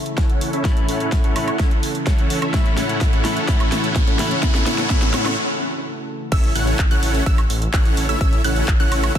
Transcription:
Already playing: C#3 E3 A3 E4 A4, riser
0.06 closed hi-hat
0.18 C#4 E4 A4 C#5 F#5, kick, snare, closed hi-hat
0.30 closed hi-hat
0.41 open hi-hat
0.53 C#4 E4 A4 C#5 E5, closed hi-hat
0.64 A2 E3 A3 C#4 E4 A4 C#5 E5, kick, snare, closed hi-hat
0.77 closed hi-hat
0.89 C#4 E4 A4 C#5 F#5, open hi-hat
1.00 closed hi-hat
1.12 kick, snare, closed hi-hat
1.24 C#4 E4 A4 C#5 F#5, closed hi-hat
1.35 A2 E3 A3 C#4 E4, open hi-hat, high woodblock
1.48 closed hi-hat, high woodblock
1.59 C#4 E4 A4 C#5 E5, kick, snare, closed hi-hat
1.71 closed hi-hat
1.83 open hi-hat
1.95 closed hi-hat
2.07 C#4 E4 A4 C#5 F#5, kick, snare, closed hi-hat
2.19 closed hi-hat
2.30 open hi-hat
2.42 C#4 E4 A4 C#5 E5, closed hi-hat, high woodblock
2.53 A2 E3 A3 C#4 E4 F#4 A4 C#5 E5, kick, snare, closed hi-hat
2.66 closed hi-hat
2.78 C#4 E4 A4 C#5 F#5, snare, open hi-hat
2.89 closed hi-hat
3.01 kick, snare, closed hi-hat
3.13 C#4 E4 A4 C#5 F#5, closed hi-hat
3.24 A2 E3 A3 C#4 E4, snare, open hi-hat
3.37 closed hi-hat
3.47 A2 E3 A3 C#4 E4 A4 C#5 E5, kick, snare, closed hi-hat
3.60 closed hi-hat, high woodblock
3.72 C#4 E4 A4 C#5 F#5, snare, open hi-hat
3.84 closed hi-hat
3.96 kick, snare, closed hi-hat
4.07 C#4 E4 A4 C#5 F#5, closed hi-hat
4.19 A2 E3 A3 C#4 E4, snare, open hi-hat
4.31 closed hi-hat
4.42 A2 E3 A3 C#4 E4 A4 C#5 E5, kick, snare, closed hi-hat
4.55 snare, closed hi-hat
4.66 C#4 E4 A4 C#5 F#5, snare, open hi-hat
4.78 snare, closed hi-hat
4.89 A2 E3 A3 C#4 E4 A4 C#5 E5, kick, snare, closed hi-hat
5.02 snare, closed hi-hat
5.14 C#4 E4 A4 C#5 F#5, snare, open hi-hat, high woodblock
5.26 snare, closed hi-hat, high woodblock
6.32 A1 C#4 E4 A4 C#5 E5 E6, kick, closed hi-hat, crash, impact
6.44 closed hi-hat
6.55 A1 C#4 E4 A4 C#5 F#5 F#6, open hi-hat
6.67 closed hi-hat
6.79 A1, kick, clap, closed hi-hat
6.91 C#4 E4 A4 C#5 F#5 F#6, closed hi-hat
7.03 A1, open hi-hat
7.15 closed hi-hat
7.26 A1 C#4 E4 A4 C#5 E5 E6, kick, closed hi-hat
7.38 closed hi-hat, high woodblock
7.50 A1, open hi-hat
7.62 closed hi-hat
7.73 A1 C#4 E4 A4 C#5 F#5 F#6, kick, clap, closed hi-hat
7.85 closed hi-hat
7.97 A1, open hi-hat
8.09 C#4 E4 A4 C#5 E5 E6, closed hi-hat
8.21 A1 C#4 E4 A4 C#5 E5 E6, kick, closed hi-hat
8.33 closed hi-hat
8.44 A1 C#4 E4 A4 C#5 F#5 F#6, open hi-hat
8.56 closed hi-hat
8.68 A1, kick, clap, closed hi-hat
8.80 C#4 E4 A4 C#5 F#5 F#6, closed hi-hat
8.92 A1, open hi-hat, high woodblock
9.04 closed hi-hat, high woodblock
9.15 A1 C#4 E4 A4 C#5 E5 E6, kick, closed hi-hat

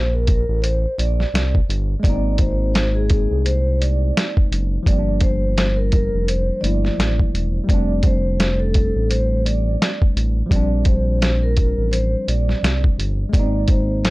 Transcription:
Already playing: A#1 C5
0.14 A#4
0.27 A#4, kick, closed hi-hat
0.49 A1
0.62 C5, closed hi-hat
0.98 A#1 D5, closed hi-hat
1.20 snare
1.34 C2, snare, closed hi-hat
1.55 kick
1.69 G1, closed hi-hat
2.00 G#3 A#3 D5
2.04 G#1 B3, kick, closed hi-hat
2.10 C4 D#4
2.38 C5, kick, closed hi-hat
2.74 C5, snare, closed hi-hat
2.95 G#4
3.10 G#4, kick, closed hi-hat
3.31 C2
3.45 C5, closed hi-hat
3.81 D5, closed hi-hat
4.17 snare, closed hi-hat
4.37 kick
4.51 F#1, closed hi-hat
4.83 G1 F3 G3, kick
4.87 A#3 D5, closed hi-hat
4.93 C4
4.99 D4
5.20 C5, kick, closed hi-hat
5.57 C5, snare, closed hi-hat
5.77 A#4
5.92 A#4, kick, closed hi-hat
6.13 F1
6.28 C5, closed hi-hat
6.61 G1 F3 A3 A#3 D5, closed hi-hat
6.66 E4
6.85 snare
6.98 A1, snare, closed hi-hat
7.19 kick
7.34 E1, closed hi-hat
7.64 G3 A3
7.69 F1 C4 D5, kick, closed hi-hat
7.74 D4
8.03 C5, kick, closed hi-hat
8.40 C5, snare, closed hi-hat
8.60 A4
8.74 A4, kick, closed hi-hat
8.96 A1
9.10 C5, closed hi-hat
9.46 D5, closed hi-hat
9.82 snare, closed hi-hat
10.02 kick
10.16 A1, closed hi-hat
10.46 F3 G3
10.51 A#1 C4 D5, kick, closed hi-hat
10.56 D4
10.85 C5, kick, closed hi-hat
11.22 C5, snare, closed hi-hat
11.43 A#4
11.57 A#4, kick, closed hi-hat
11.78 A1
11.91 C5, closed hi-hat
12.28 A#1 D5, closed hi-hat
12.49 snare
12.63 C2, snare, closed hi-hat
12.84 kick
12.98 G1, closed hi-hat
13.29 G#3 A#3 D5
13.33 G#1 B3, kick, closed hi-hat
13.39 C4 D#4
13.68 C5, kick, closed hi-hat
14.04 C5, snare, closed hi-hat

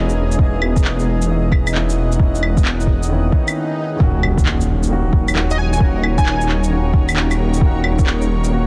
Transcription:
Already playing: E1 A#3 B3 C#4 D#4 E4 G#4 D#5 G#5 A#5
0.09 shaker
0.32 D#4, shaker
0.38 E1 B3 C#4, kick
0.43 E4
0.62 claves
0.74 F#5, kick, shaker
0.84 clap
0.99 shaker
1.13 D#5
1.22 shaker
1.27 B3 C#4 D#4 E4
1.52 kick, claves
1.67 claves, shaker
1.73 B3 C#4 D#4 E4, clap
1.90 shaker
2.12 D#4, shaker
2.18 E1 B3 C#4, kick
2.23 E4
2.35 shaker
2.43 claves
2.57 kick, shaker
2.65 clap
2.80 shaker
2.87 kick
3.03 shaker
3.08 D#3 B3 C#4, swell
3.13 E4
3.30 D#3 B3 C#4, kick
3.34 E4
3.48 claves, shaker
3.96 D#1 D#3 A#3
4.00 C#4 D#4 F#4, kick, impact
4.09 A#4 C#5
4.23 claves
4.38 kick, shaker
4.46 clap
4.61 shaker
4.83 shaker
4.88 D#3 A#3 C#4
4.92 F#4
5.13 kick
5.28 claves, shaker
5.33 D#3 A#3 C#4, clap
5.37 F#4
5.51 D#5, shaker
5.58 G#5
5.73 D#3 G#5, shaker
5.79 D#1 A#3 C#4, kick
5.84 F#4
6.04 claves
6.18 G#5, kick, shaker
6.26 clap
6.41 shaker
6.49 clap
6.64 shaker
6.69 D#3 A#3 C#4
6.73 F#4
6.93 D#1, kick
7.09 claves, shaker
7.14 D#3 A#3 C#4, clap
7.18 F#4
7.31 claves, shaker
7.54 D#3, shaker
7.60 D#1 A#3 C#4, kick
7.65 F#4
7.84 claves
7.99 kick, shaker
8.06 clap
8.22 shaker
8.44 shaker
8.50 D#3 A#3 C#4 F#4

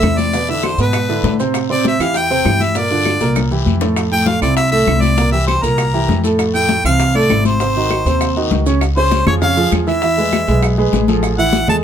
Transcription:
Already playing: E5
0.03 E2 C3 C4 E4, high bongo, low bongo, high conga, short guiro, claves, maracas
0.18 D5, high bongo, high conga, short guiro, maracas
0.33 B2 B3 B4, high bongo, high conga, long guiro, maracas
0.48 D3 D4 E4 E5, high bongo, high conga, maracas
0.63 C5, high bongo, high conga, short guiro, claves, maracas
0.78 G#2 B2 B3 B4, high conga, short guiro, maracas
0.93 high bongo, high conga, long guiro, claves, maracas
1.09 D3 D4 E4, high conga, maracas
1.24 A2, high bongo, low bongo, high conga, short guiro, maracas
1.39 C3 C4 C5, high bongo, high conga, short guiro, maracas
1.54 high bongo, high conga, long guiro, claves, maracas
1.69 C3 C4 C5 D5, high bongo, high conga, maracas
1.84 E5, high bongo, high conga, short guiro, maracas
1.99 E2 E3 E4 G4 F5, high conga, short guiro, claves, maracas
2.14 G5, high bongo, high conga, long guiro, maracas
2.30 C3 C4 C5, high conga, maracas
2.45 G2 E3 E4 G4, high bongo, low bongo, high conga, short guiro, claves, maracas
2.60 E5, high bongo, high conga, short guiro, maracas
2.75 A#2 A#3 A#4 D5, high bongo, high conga, long guiro, maracas
2.90 D3 D4 F4, high bongo, high conga, maracas
3.05 high bongo, high conga, short guiro, claves, maracas
3.20 C2 A#2 A#3 A#4, high bongo, high conga, short guiro, maracas
3.36 low bongo, high conga, long guiro, claves, maracas
3.51 E3 E4 G4, high conga, maracas
3.66 F2, high conga, short guiro, maracas
3.81 A2 A3 A4, low bongo, short guiro, maracas
3.96 high bongo, high conga, long guiro, claves, maracas
4.11 A2 A3 A4 G5, high bongo, high conga, maracas
4.26 F5, high bongo, high conga, short guiro, maracas
4.41 C2 C3 C4 E4 D5, high conga, short guiro, claves, maracas
4.57 E5, high bongo, high conga, long guiro, maracas
4.71 A2 A3 A4 E5, high conga, maracas
4.87 C2 C3 C4 E4, high bongo, low bongo, high conga, short guiro, claves, maracas
5.01 D5, high bongo, high conga, short guiro, maracas
5.17 A#2 A#3 A#4, high bongo, high conga, long guiro, maracas
5.32 E3 E4 G4 E5, high bongo, high conga, maracas
5.47 C5, high bongo, high conga, short guiro, claves, maracas
5.62 C2 A#2 A#3 A#4, high conga, short guiro, maracas
5.78 high bongo, high conga, long guiro, claves, maracas
5.94 E3 E4 G4, high conga, maracas
6.08 F2, high bongo, low bongo, high conga, short guiro, maracas
6.24 A2 A3 A4, high bongo, high conga, short guiro, maracas
6.39 high bongo, high conga, long guiro, claves, maracas
6.54 A2 A3 A4 G5, high bongo, high conga, maracas
6.69 high bongo, high conga, short guiro, maracas
6.84 C2 C3 E3 C4 F5, high conga, short guiro, claves, maracas
7.00 high bongo, high conga, long guiro, maracas
7.15 A2 A3 A4 D5, high conga, maracas
7.29 G#1 C3 C4 E4, high bongo, low bongo, high conga, short guiro, claves, maracas
7.45 C5, high bongo, high conga, short guiro, maracas
7.60 C3 C4 C5, high bongo, long guiro, maracas
7.75 D#3 D#4 F#4, high bongo, high conga, maracas
7.90 high bongo, high conga, short guiro, claves, maracas
8.05 D#2 C3 C4 C5, high conga, short guiro, maracas
8.21 high bongo, high conga, long guiro, claves, maracas
8.36 D#3 D#4 F#4, high conga, maracas
8.51 C#2, high bongo, low bongo, high conga, short guiro, maracas
8.66 C#3 C#4 C#5, high bongo, high conga, short guiro, maracas
8.81 high bongo, high conga, long guiro, claves, maracas
8.96 C#3 C#4 C5, high bongo, high conga, maracas
9.11 high bongo, high conga, short guiro, maracas
9.26 F2 F3 F4 G#4 C#5, high conga, low conga, short guiro, claves, maracas
9.42 C#3 C#4 C#5 F5, high bongo, high conga, low conga, long guiro, maracas
9.57 F3 F4 G#4, high conga, maracas
9.72 E2, high bongo, low bongo, high conga, short guiro, claves, maracas
9.87 E3 E4 E5, high bongo, high conga, short guiro, maracas
10.02 E3 E4 E5, high bongo, high conga, long guiro, maracas
10.17 G#3 G#4 B4, high bongo, high conga, maracas
10.33 high bongo, high conga, short guiro, claves, maracas
10.47 B1 G#3 G#4 B4, short guiro, maracas
10.63 high bongo, high conga, long guiro, claves, maracas
10.78 G#3 G#4 B4, high bongo, high conga
10.92 A1, high bongo, low bongo, high conga, short guiro, maracas
11.08 F3 G#4 A4, high bongo, high conga, short guiro, maracas
11.23 high bongo, high conga, long guiro, claves, maracas
11.38 E3 E4 E5 F#5, high bongo, high conga, maracas
11.53 high bongo, high conga, short guiro, maracas
11.68 E2 G#3 G#4 A4 A5, high conga, low conga, short guiro, claves, maracas

